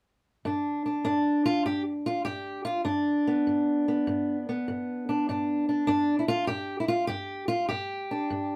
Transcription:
0.45 G2 D4
0.86 D4
1.05 G2 D4
1.46 F4
1.65 G2 G4
2.06 F4
2.25 G2 G4
2.65 F4
2.85 G2 D4
3.27 B3
3.47 G2
3.88 B3
4.07 G2
4.49 B3
4.68 G2
5.09 D4
5.29 G2 D4
5.69 D4
5.87 G2 D4
6.19 E4
6.28 F4
6.47 G2 G4
6.80 E4
6.88 F4
7.07 G2 G4
7.48 F4
7.69 G2 G4
8.11 D4
8.30 G2

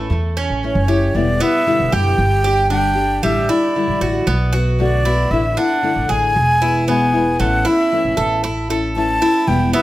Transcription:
Already playing: A3
0.10 E2, muted nylon-string guitar stroke
0.37 C#4
0.50 A1
0.63 E3 A3 C#4 E4 C#5
0.75 F#1
0.88 A3 C#4 E4 G4
1.15 E1 B2 D3 G3 B3 E4 D5
1.40 G3 B3 E4 E5
1.66 B2 D3 G3 B3 E4
1.80 E1
1.92 F#1 G4 G5
2.18 G1, muted nylon-string guitar stroke
2.44 G3 D4 G4
2.70 D3 G3 D4 G4 G5
2.96 G3 D4 G4
3.23 A1 D3 G3 D4 E4 E5
3.49 G3 D4 E4 D5
3.76 D3 G3 D4 E4
3.88 A1
4.01 A1 F#4
4.27 B1 B3, muted nylon-string guitar stroke
4.53 A3 B3 F#4
4.80 B2 D3 A3 B3 F#4 D5
5.05 A3 B3 E4 F#4
5.31 A1 D3 A3 D4 E4 E5
5.57 A3 D4 E4 F#5
5.83 D3 A3 D4 E4
5.96 A1
6.09 A1 G#4 G#5
6.36 E1, muted nylon-string guitar stroke
6.62 G#3 B3 E4
6.88 B2 E3 G#3 B3 E4 G#5
7.14 G#3 B3 E4
7.40 A1 E3 A3 C#4 E4 F#5
7.65 A3 C#4 E4 E5
7.92 E3 A3 C#4 E4
8.05 A1
8.17 A1 A4
8.44 E4, muted nylon-string guitar stroke
8.70 A3 C#4 E4 A4
8.96 E3 A3 C#4 E4 A5
9.22 A3 C#4 E4
9.47 E1 B2 E3 G3 B3 E4 G5
9.73 G3 B3 E4 E5

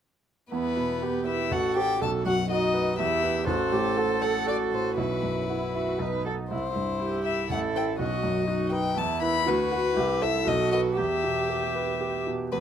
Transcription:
0.51 E2 B3 E4 B4
0.77 B2
1.02 G4
1.26 E4 B4 E5
1.51 A1 F#4 A4 F#5
1.76 F#4 G4 C5 G5
2.00 B1 F#4 A4 A5
2.26 F#2 F#4 F#5
2.49 D#4 F#4 D#5
2.74 B4
2.98 E2 E4 G4 E5
3.23 E4 B4
3.46 A1 F#4 A4 C5
3.72 A2 G4
3.97 F#4 A4
4.21 A4 C5 F#5
4.46 F#4 D5
4.71 A2 C5
4.96 B1 E4 F#4 B4
5.23 F#2
5.49 E4 F#4
5.74 F#4 E5
6.00 B1 D#4 B4
6.25 F#4 A4 D#5
6.51 C2 E4 C5
6.75 G2 E4
7.00 E4 G4
7.25 E5
7.50 A1 A4 F#5
7.75 E4 C5 G5
7.99 B1 F#4 D#5
8.23 F#2
8.47 D#4 F#4
8.71 D#4 B4 G5
8.96 E2 E4 A5
9.21 E4 B4 B5
9.46 D2 F#4 B4
9.72 F#4 B4
9.95 C2 E4 G4
10.22 E4 A4 C5 E5
10.46 B1 F#4 D#5
10.72 F#4 B4 D#5
10.97 E2 G4 E5
11.24 B2
11.50 G4
11.75 B4
12.01 G4
12.27 B2
12.52 E2 G3 B4

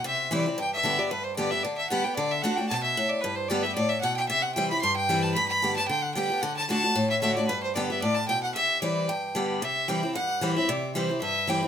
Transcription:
0.04 C3 E5
0.31 E3 G3 C4 E4 D5
0.46 C4 E4
0.58 G2 G5
0.74 E5
0.83 D3 G3 B3 G4
0.99 B3 G4 D5
1.10 G2 B4
1.24 C5
1.36 D3 G3 B3 G4 D5
1.51 B3 G4 E5
1.63 D3 D5
1.77 E5
1.90 D3 G3 B3 G4 F#5
2.04 B3 G4 G5
2.16 D3 D5
2.31 E5
2.42 D3 A3 D4 F#4 F#5
2.57 D4 F#4 G5
2.69 B2 A5
2.83 E5
2.97 A2
3.09 D5
3.21 G2 B4
3.36 C5
3.49 D3 G3 B3 G4 D5
3.63 B3 G4 E5
3.75 A2 D5
3.89 E5
4.01 B2 F#5
4.17 G5
4.29 C3 E5
4.43 F#5
4.55 E3 G3 C4 E4 G5
4.70 C4 E4 B5
4.81 G2 C6
4.96 G5
5.09 E3 G3 C4 E4
5.23 A5
5.34 G2 B5
5.48 B5
5.62 D3 G3 B3 G4
5.76 B3 G4 A5
5.88 D3 G5
6.02 F#5
6.14 D3 G3 B3 G4 G5
6.30 B3 G4
6.41 D3 F#5
6.57 A5
6.69 D3 A3 D4 F#4 A5
6.84 D4 F#4
6.95 A2
7.10 E5
7.22 D3 A3 D4 F#4 E5
7.35 D4 F#4 D5
7.48 G2 B4
7.63 C5
7.75 D3 G3 B3 G4 D5
7.90 B3 G4 E5
8.02 A2 D5
8.15 A5
8.28 B2 G5
8.43 F#5
8.55 C3 E5
8.82 E3 G3 C4 E4 D5
9.09 G2 G5
9.35 D3 G3 B3 G4
9.62 C3 E5
9.88 E3 G3 C4 E4 G5
10.03 C4 E4
10.15 G2 F#5
10.41 E3 G3 C4 E4
10.56 C4 E4 E5
10.69 C3 D5
10.95 E3 G3 C4 E4 C5
11.09 C4 E4
11.22 G2 E5
11.47 E3 G3 C4 E4 G5
11.63 C4 E4

